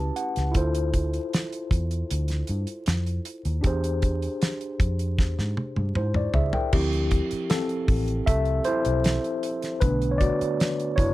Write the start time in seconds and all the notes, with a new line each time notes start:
Already playing: C#4 E4 G4 B4 A5
0.16 F#5, closed hi-hat
0.36 C#2, snare, closed hi-hat
0.52 D2 E4 F4 A4, kick, closed hi-hat
0.57 C5
0.75 closed hi-hat
0.94 kick, closed hi-hat
1.14 closed hi-hat
1.33 snare, closed hi-hat
1.52 closed hi-hat
1.71 E2, kick, closed hi-hat
1.91 closed hi-hat
2.10 D2, closed hi-hat
2.28 snare, closed hi-hat
2.47 G2, closed hi-hat
2.67 closed hi-hat
2.86 F2, snare, closed hi-hat
3.07 closed hi-hat
3.25 closed hi-hat
3.45 D#2, closed hi-hat
3.61 E2 D4 G4 G#4, kick, closed hi-hat
3.67 C5
3.84 closed hi-hat
4.02 kick, closed hi-hat
4.22 closed hi-hat
4.42 snare, closed hi-hat
4.61 closed hi-hat
4.80 F2, kick, closed hi-hat
4.99 closed hi-hat
5.19 E2, kick, snare
5.39 G#2, snare
5.57 high tom
5.76 G2, high tom
5.95 G#2 E4 C5, mid tom
6.14 D5, mid tom
6.34 C#2 G#4 E5, floor tom
6.53 A#4 G5, floor tom
6.73 D2 F3 C4 E4 G4, kick, crash
6.93 closed hi-hat
7.11 kick, closed hi-hat
7.31 muted fingered electric bass stroke, closed hi-hat
7.50 C4 A4, snare, closed hi-hat
7.69 closed hi-hat
7.88 A1, kick, open hi-hat
8.08 closed hi-hat
8.26 C2 A4 E5, kick, closed hi-hat
8.45 closed hi-hat
8.64 E4 C5, closed hi-hat
8.85 B1, closed hi-hat
9.04 snare, closed hi-hat
9.24 closed hi-hat
9.43 closed hi-hat
9.62 snare, closed hi-hat
9.80 B1 D3 A3 B3 D4 B4, kick, closed hi-hat
10.02 closed hi-hat
10.11 C#5
10.18 F#4 D5, kick, closed hi-hat
10.41 muted fingered electric bass stroke, closed hi-hat
10.60 snare, closed hi-hat
10.80 closed hi-hat
10.96 F#1 E4 C#5, kick, closed hi-hat